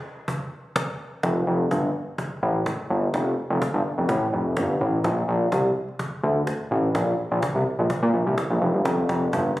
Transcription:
0.28 cajon bass loud
0.76 cajon bass loud
0.76 cajon slap loud
1.23 1.42 F1 loud
1.23 cajon bass loud
1.23 cajon slap medium
1.47 1.66 F1 loud
1.71 1.90 G1 medium
1.71 cajon bass loud
1.71 cajon slap medium
2.18 cajon bass loud
2.18 cajon slap medium
2.43 2.61 A1 loud
2.66 cajon bass loud
2.66 cajon slap medium
2.90 3.09 G1 medium
3.14 3.33 F1 loud
3.14 cajon bass loud
3.14 cajon slap medium
3.50 3.59 F1 loud
3.62 cajon bass loud
3.62 cajon slap medium
3.74 3.83 G1 medium
3.98 4.07 F1 medium
4.09 4.28 A1 loud
4.09 cajon bass loud
4.09 cajon slap medium
4.33 4.58 F1 medium
4.57 4.75 G1 medium
4.57 cajon bass loud
4.57 cajon slap medium
4.81 4.99 A1 medium
5.04 5.23 A#1 loud
5.04 cajon bass loud
5.04 cajon slap medium
5.17 cajon slap soft
5.28 5.47 A#1 loud
5.28 cajon slap soft
5.41 cajon slap soft
5.52 5.71 C2 medium
5.52 cajon bass loud
5.52 cajon slap medium
5.65 cajon slap soft
5.76 cajon slap soft
5.88 cajon slap soft
5.99 cajon bass loud
5.99 cajon slap medium
6.12 cajon slap soft
6.23 6.42 D2 medium
6.23 cajon slap soft
6.36 cajon slap soft
6.47 cajon bass loud
6.47 cajon slap medium
6.60 cajon slap soft
6.71 6.90 A1 loud
6.84 cajon slap soft
6.95 7.14 A#1 loud
6.95 cajon bass loud
6.95 cajon slap medium
7.07 cajon slap soft
7.19 cajon slap soft
7.31 7.40 A#1 loud
7.31 cajon slap soft
7.42 cajon bass loud
7.42 cajon slap medium
7.55 7.64 C2 medium
7.66 cajon slap soft
7.79 7.88 A#1 medium
7.79 cajon slap soft
7.90 cajon bass loud
7.90 cajon slap medium
8.03 8.12 A#2 medium
8.14 8.24 A#1 medium
8.14 cajon slap soft
8.26 8.35 C2 loud
8.26 cajon slap soft
8.38 cajon bass loud
8.38 cajon slap medium
8.50 8.59 A#1 medium
8.50 cajon slap soft
8.61 8.71 F1 loud
8.61 cajon slap soft
8.74 8.83 G1 medium
8.74 cajon slap soft
8.85 9.04 F1 loud
8.85 cajon bass loud
8.85 cajon slap medium
8.98 cajon slap soft
9.09 9.28 F1 loud
9.09 cajon slap medium
9.22 cajon slap soft
9.33 9.52 G1 loud
9.33 cajon bass loud
9.33 cajon slap medium
9.46 cajon slap soft
9.57 cajon slap medium

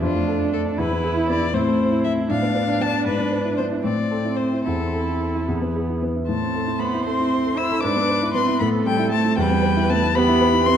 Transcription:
0.01 0.75 F2 medium
0.01 0.79 D4 medium
0.01 0.51 F4 medium
0.15 0.34 A3 soft
0.28 0.47 A4 medium
0.40 0.60 D4 soft
0.53 0.73 A3 soft
0.53 0.61 A4 medium
0.65 0.77 D4 medium
0.77 1.52 E2 medium
0.77 1.53 E4 medium
0.77 1.28 B4 medium
0.91 1.11 B3 soft
1.04 1.24 G#4 medium
1.17 1.36 E4 soft
1.29 1.49 B3 medium
1.29 1.55 D5 loud
1.42 1.54 E4 medium
1.54 2.27 A2 medium
1.54 2.28 C4 medium
1.54 2.31 E4 medium
1.54 2.03 C5 medium
1.67 1.87 A3 medium
1.80 2.00 C5 medium
1.92 2.12 E4 soft
2.04 2.25 A3 soft
2.04 2.12 E5 medium
2.18 2.30 E4 medium
2.30 3.03 A2 medium
2.30 3.85 D4 medium
2.30 3.81 D4 medium
2.30 2.83 F5 loud
2.42 2.62 B3 soft
2.55 2.75 B4 medium
2.68 2.88 D4 medium
2.80 3.00 B3 medium
2.80 3.06 A5 loud
2.93 3.05 D4 soft
3.06 3.81 G#2 medium
3.06 3.57 B4 medium
3.19 3.39 B3 soft
3.31 3.52 B4 medium
3.45 3.65 E4 soft
3.57 3.79 B3 soft
3.57 3.65 C5 medium
3.72 3.84 E4 soft
3.83 4.63 A2 medium
3.83 4.65 C4 medium
3.83 4.67 C4 medium
3.83 4.38 D5 medium
3.98 4.19 C4 soft
4.11 4.33 A4 soft
4.25 4.47 E4 soft
4.36 4.60 C4 soft
4.36 4.64 C5 medium
4.53 4.66 E4 soft
4.64 5.45 E2 soft
4.64 5.48 C4 soft
4.64 5.88 E4 medium
4.64 5.45 A4 medium
4.80 5.01 C4 soft
4.93 5.15 A4 soft
5.07 5.28 E4 soft
5.21 5.42 C4 soft
5.35 5.48 E4 soft
5.46 6.26 E2 medium
5.46 6.07 B3 medium
5.62 5.83 B3 soft
5.76 5.97 G#4 soft
5.89 6.10 E4 soft
6.02 6.23 B3 soft
6.16 6.29 E4 soft
6.28 7.80 A2 medium
6.28 6.81 A3 medium
6.28 7.80 C5 medium
6.28 6.81 A5 medium
6.42 6.62 C4 soft
6.55 6.75 A4 medium
6.67 6.88 E4 soft
6.79 7.06 B3 medium
6.79 7.01 C4 medium
6.79 7.05 B5 medium
6.94 7.14 E4 medium
7.05 7.59 C4 medium
7.05 7.27 A4 medium
7.05 7.59 C6 medium
7.20 7.40 E4 soft
7.33 7.53 C5 medium
7.46 7.66 A4 medium
7.57 7.83 E4 medium
7.57 7.79 C5 medium
7.57 7.82 E6 loud
7.71 7.84 A4 medium
7.83 8.59 G#2 medium
7.83 8.34 D4 medium
7.83 8.63 B4 medium
7.83 8.34 D6 loud
7.96 8.17 B3 medium
8.09 8.30 B4 medium
8.22 8.43 E4 medium
8.34 8.55 B3 medium
8.34 8.63 C4 medium
8.34 8.59 C6 loud
8.48 8.61 E4 medium
8.60 9.36 A2 medium
8.60 8.87 B3 medium
8.60 9.38 A4 medium
8.60 8.68 B5 loud
8.74 8.94 C4 medium
8.87 9.14 G3 medium
8.87 9.07 A4 medium
8.87 9.11 G5 loud
8.99 9.20 E4 medium
9.12 9.41 A3 medium
9.12 9.33 C4 medium
9.12 9.38 A5 loud
9.25 9.38 E4 medium
9.37 10.77 E2 medium
9.37 9.90 G3 medium
9.37 10.14 B4 medium
9.37 9.91 G5 loud
9.51 9.72 B3 medium
9.63 9.84 B4 medium
9.76 9.97 E4 medium
9.90 9.99 A3 medium
9.90 10.11 B3 medium
9.90 10.17 A5 loud
10.03 10.24 E4 medium
10.15 10.65 B3 loud
10.15 10.77 G4 medium
10.15 10.36 B4 medium
10.15 10.67 B5 loud
10.28 10.49 E4 medium
10.41 10.61 B4 medium
10.54 10.74 E4 medium
10.66 10.77 C4 loud
10.66 10.77 B4 medium
10.66 10.77 C6 loud

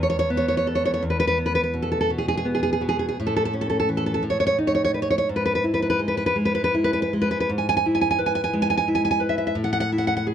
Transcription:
0.00 0.99 E2 medium
0.00 0.08 C#5 medium
0.10 0.18 C#5 medium
0.19 0.29 C#5 medium
0.30 1.02 B3 soft
0.37 0.47 C#5 medium
0.48 0.56 C#5 medium
0.57 0.66 C#5 medium
0.67 1.03 A4 medium
0.75 0.84 C#5 medium
0.85 0.92 C#5 medium
0.94 1.02 C#5 medium
1.03 3.13 E2 medium
1.10 1.18 B4 medium
1.20 1.26 B4 medium
1.27 1.37 B4 medium
1.38 2.44 B3 soft
1.46 1.54 B4 medium
1.55 1.62 B4 medium
1.74 2.09 B2 soft
1.82 1.90 A4 medium
1.92 1.99 A4 medium
2.01 2.10 A4 medium
2.10 2.80 B2 soft
2.18 2.27 G#4 medium
2.28 2.36 G#4 medium
2.37 2.46 G#4 medium
2.45 3.16 B3 soft
2.55 2.62 G#4 medium
2.63 2.71 G#4 medium
2.73 2.82 G#4 medium
2.81 3.16 B2 soft
2.89 2.98 G#4 medium
2.99 3.07 G#4 medium
3.09 3.17 G#4 medium
3.20 4.21 A2 medium
3.27 3.35 A4 medium
3.36 3.44 A4 medium
3.45 3.53 A4 medium
3.53 4.23 C#4 soft
3.61 3.68 A4 medium
3.70 3.78 A4 medium
3.80 3.88 A4 medium
3.89 4.23 E3 soft
3.97 4.05 A4 medium
4.06 4.13 A4 medium
4.14 4.23 A4 medium
4.23 5.25 A2 medium
4.30 4.39 C#5 medium
4.40 4.45 C#5 medium
4.47 4.56 C#5 medium
4.58 5.28 D#4 soft
4.67 4.73 C#5 medium
4.75 4.83 C#5 medium
4.85 4.93 C#5 medium
4.94 5.02 B4 soft
5.02 5.09 C#5 medium
5.10 5.17 C#5 medium
5.18 5.27 C#5 medium
5.29 7.46 G#2 medium
5.36 5.44 B4 medium
5.46 5.54 B4 medium
5.55 5.64 B4 medium
5.64 6.73 E4 soft
5.74 5.81 B4 medium
5.82 5.89 B4 medium
5.90 5.99 B4 medium
5.99 6.35 G#3 soft
6.08 6.16 B4 medium
6.17 6.25 B4 medium
6.26 6.35 B4 medium
6.36 7.12 G#3 soft
6.45 6.54 B4 medium
6.55 6.63 B4 medium
6.64 6.73 B4 medium
6.74 7.50 E4 medium
6.84 6.92 B4 medium
6.93 7.01 B4 medium
7.02 7.12 B4 medium
7.13 7.50 G#3 soft
7.22 7.30 B4 medium
7.31 7.39 B4 medium
7.40 7.49 B4 medium
7.49 9.52 G#2 medium
7.58 7.67 G#5 medium
7.69 7.76 G#5 medium
7.77 7.85 G#5 medium
7.86 8.87 E4 soft
7.95 8.00 G#5 medium
8.01 8.09 G#5 medium
8.11 8.19 G#5 medium
8.19 9.19 B4 medium
8.26 8.34 G#5 medium
8.35 8.43 G#5 medium
8.44 8.53 G#5 medium
8.53 9.55 G#3 soft
8.62 8.69 G#5 medium
8.70 8.76 G#5 medium
8.77 8.87 G#5 medium
8.88 9.56 E4 soft
8.95 9.04 G#5 medium
9.05 9.10 G#5 medium
9.11 9.21 G#5 medium
9.20 9.55 B4 medium
9.29 9.37 E5 medium
9.38 9.46 E5 medium
9.47 9.56 E5 medium
9.55 10.34 A2 medium
9.64 9.71 F#5 medium
9.73 9.79 F#5 medium
9.80 9.90 F#5 medium
9.92 10.34 E4 soft
9.98 10.06 F#5 medium
10.07 10.15 F#5 medium
10.17 10.26 F#5 medium
10.27 10.34 G#4 soft

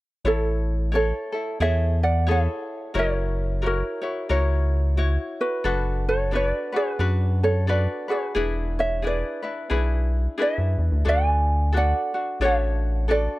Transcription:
0.25 1.12 A1 medium
0.25 0.93 E4 medium
0.25 0.89 E4 medium
0.25 0.92 A4 medium
0.25 0.89 A4 medium
0.25 0.92 C#5 medium
0.92 1.33 E4 soft
0.92 1.31 A4 medium
0.92 1.57 A4 medium
0.92 1.32 C#5 medium
0.92 1.61 C#5 medium
1.32 1.59 E4 soft
1.32 1.59 A4 soft
1.60 2.48 E2 medium
1.60 2.27 E4 medium
1.60 2.26 G#4 medium
1.60 2.27 A4 medium
1.60 1.99 C#5 medium
1.60 2.02 E5 medium
2.03 2.27 D5 medium
2.03 2.29 F#5 medium
2.27 2.94 E4 medium
2.27 2.95 G#4 medium
2.27 2.95 A4 medium
2.27 2.94 C#5 medium
2.31 2.93 C#5 medium
2.31 2.93 E5 medium
2.94 3.83 F#1 medium
2.94 3.62 E4 medium
2.94 3.62 F#4 medium
2.94 3.61 A#4 medium
2.94 3.63 C#5 medium
2.99 3.60 A#4 medium
2.99 3.66 C#5 medium
3.62 4.02 E4 medium
3.62 4.02 F#4 medium
3.62 4.01 A#4 soft
3.62 4.00 C#5 medium
3.66 4.28 F#4 medium
3.66 4.28 A#4 medium
4.02 4.29 E4 soft
4.02 4.28 F#4 soft
4.02 4.29 C#5 medium
4.29 5.18 C#2 medium
4.29 4.97 E4 medium
4.29 4.97 F#4 medium
4.29 4.97 A#4 medium
4.29 4.97 C#5 medium
4.97 5.65 E4 medium
4.97 5.65 F#4 medium
4.97 5.64 C#5 medium
5.41 6.03 F#4 medium
5.41 6.08 B4 medium
5.64 6.53 F#1 medium
5.64 6.32 D4 medium
5.64 6.32 F#4 medium
5.64 6.30 A4 medium
5.64 6.33 B4 medium
6.09 6.32 A4 soft
6.09 6.35 C#5 medium
6.31 6.73 D4 medium
6.31 6.72 F#4 medium
6.31 6.72 A4 soft
6.31 6.71 B4 medium
6.31 6.72 B4 medium
6.36 6.47 C#5 medium
6.47 6.76 D5 medium
6.72 6.98 D4 soft
6.72 6.99 F#4 soft
6.72 7.38 G#4 medium
6.72 6.99 B4 medium
6.72 7.43 B4 medium
6.99 7.87 F#2 medium
6.99 7.68 D4 medium
6.99 7.68 F#4 medium
6.99 7.69 B4 medium
7.43 7.67 A4 medium
7.43 7.69 C#5 medium
7.67 8.08 D4 medium
7.67 8.08 F#4 medium
7.67 8.08 A4 medium
7.67 8.06 B4 medium
7.67 8.07 B4 medium
7.67 8.10 D5 medium
8.08 8.34 D4 soft
8.08 8.36 F#4 soft
8.08 8.73 G#4 medium
8.08 8.35 B4 soft
8.08 8.79 B4 medium
8.35 9.23 E1 medium
8.35 9.03 D4 medium
8.35 9.03 E4 medium
8.35 9.01 G#4 medium
8.35 9.03 B4 medium
8.79 9.03 C#5 medium
8.79 9.03 E5 medium
9.02 9.43 D4 medium
9.02 9.42 E4 medium
9.02 9.43 G#4 soft
9.02 9.41 B4 medium
9.02 10.36 B4 medium
9.07 10.41 D5 medium
9.43 9.69 D4 soft
9.43 9.70 E4 soft
9.43 9.70 B4 medium
9.70 10.28 B1 medium
9.70 10.37 D4 medium
9.70 10.37 E4 medium
9.70 10.36 G#4 medium
9.70 10.38 B4 medium
10.38 11.05 D4 medium
10.38 11.05 E4 medium
10.38 11.05 G#4 medium
10.38 11.04 B4 medium
10.38 11.03 B4 medium
10.42 11.08 E5 medium
10.58 10.76 F#2 medium
10.78 10.90 E2 medium
10.92 11.04 D2 medium
11.05 11.93 D2 medium
11.05 11.73 D4 medium
11.05 11.74 F#4 medium
11.05 11.73 A4 medium
11.05 11.70 D5 medium
11.09 11.77 G#5 medium
11.73 12.14 D4 soft
11.73 12.13 F#4 medium
11.73 12.13 A4 medium
11.77 12.38 D5 medium
11.77 12.45 F#5 medium
12.14 12.40 D4 soft
12.14 12.40 F#4 soft
12.40 13.28 A1 medium
12.40 13.08 D4 medium
12.40 13.09 F#4 medium
12.40 13.08 A4 medium
12.40 13.08 C#5 medium
12.44 13.06 C#5 medium
12.44 13.10 E5 medium
13.08 13.39 D4 medium
13.08 13.39 F#4 medium
13.08 13.39 A4 medium
13.08 13.39 D5 medium

